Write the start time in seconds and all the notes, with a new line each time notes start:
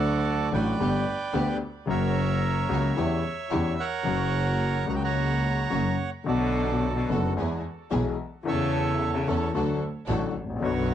Already playing: D2 D3 F#3 A3 D4 F#4 A4 D5
0.52 A1 A2 D3 F#3 A3 D4 F#4 B4 D5 G5
0.79 G1 G2 D3 G3 B3 D4 G4
1.33 D2 D3 G3 B3 D4 G4
1.86 F#1 F#2 C#3 F#3 A#3 C#4 F#4 A#4 C#5
1.90 E5
2.69 C#2 C#3 F#3 A#3 C#4 F#4
2.97 E2 E3 G3 C#4 E4 G4
3.51 E2 E3 G3 C#4 E4 G4
3.80 A#4 C#5 F#5
4.03 F#1 F#2 C#3 F#3 A#3 C#4 F#4
4.87 C#2 C#3 F#3 A#3 C#4 F#4 A#5
4.96 G5
5.04 C#5 F#5 A#5
5.70 F#1 F#2 C#3 F#3 A#3 C#4 F#4
6.24 B1 B2 D3 A3 B3 D4 F#4 A4 D5
6.28 F#4 A4
6.96 B2 D5
7.09 F#1 F#2 D3 A3 B3 D4 F#4 A4
7.36 E2 E3 G#3 B3 E4 G#4
7.91 B1 B2 E3 G#3 B3 E4 G#4
8.43 E2 C#3 E3 A3 C#4 E4 A4
8.47 A4 C#5 E5
9.13 C#3 E5
9.27 E2 E3 A3 C#4 E4 A4
9.54 D2 D3 F#3 A3 D4 F#4 A4
10.08 A1 A2 D3 F#3 A3 D4 F#4 A4
10.36 A1
10.43 G#1
10.50 A1
10.56 A#1
10.60 B1 F#2 B2 D3 F#3 B3 D4 F#4 B4 C#5
10.65 F#4